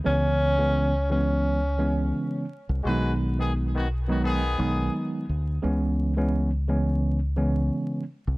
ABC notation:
X:1
M:4/4
L:1/16
Q:"Swing 16ths" 1/4=86
K:C#m
V:1 name="Tenor saxophone"
C6 C6 z4 | z16 | z16 |]
V:2 name="Horn section"
z16 | [G,FB]2 z [D,B,G] z [D,B,F] z [D,B,F] [D,B,G]4 z4 | z16 |]
V:3 name="Tine electric piano" clef=bass
[C,E,G,B,C]3 [C,E,G,B,C]2 z [C,E,G,B,C]3 z [C,E,G,B,C]4 z2 | [D,F,G,B,D]6 z [D,F,G,B,D]2 z [D,F,G,B,D]4 z2 | [C,E,G,B,C]3 [C,E,G,B,C]2 z [C,E,G,B,C]3 z [C,E,G,B,C]4 z2 |]
V:4 name="Fingered electric bass" clef=bass
C,,12 z3 ^B,,, | B,,,8- B,,,2 B,,,2 z2 =D,,2 | C,,12 z3 ^B,,, |]